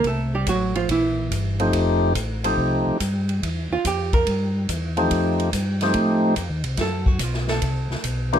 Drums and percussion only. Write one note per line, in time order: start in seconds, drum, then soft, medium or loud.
0.04 kick soft
0.04 ride medium
0.47 kick soft
0.47 hi-hat pedal medium
0.47 ride medium
0.75 ride soft
0.89 kick soft
0.89 ride medium
1.31 kick soft
1.31 hi-hat pedal soft
1.31 ride medium
1.60 ride soft
1.73 kick soft
1.73 ride medium
2.15 kick soft
2.15 hi-hat pedal medium
2.15 ride medium
2.44 ride medium
2.58 kick soft
3.00 kick soft
3.00 hi-hat pedal soft
3.00 ride medium
3.29 ride soft
3.43 kick soft
3.43 ride medium
3.85 kick soft
3.85 hi-hat pedal medium
3.85 ride medium
4.13 kick soft
4.13 ride soft
4.27 kick soft
4.27 ride medium
4.69 kick soft
4.69 hi-hat pedal medium
4.69 ride medium
4.97 ride soft
5.11 kick soft
5.11 ride medium
5.40 ride soft
5.53 kick soft
5.53 hi-hat pedal medium
5.53 ride medium
5.81 snare soft
5.81 ride soft
5.94 kick soft
5.94 ride medium
6.36 kick soft
6.36 hi-hat pedal medium
6.36 ride medium
6.64 ride soft
6.77 kick soft
6.77 snare soft
6.77 ride medium
7.06 kick soft
7.19 kick soft
7.19 hi-hat pedal medium
7.19 ride medium
7.33 snare soft
7.47 snare soft
7.62 kick soft
7.62 ride medium
7.91 snare soft
8.04 kick soft
8.04 hi-hat pedal soft
8.04 ride medium
8.33 ride soft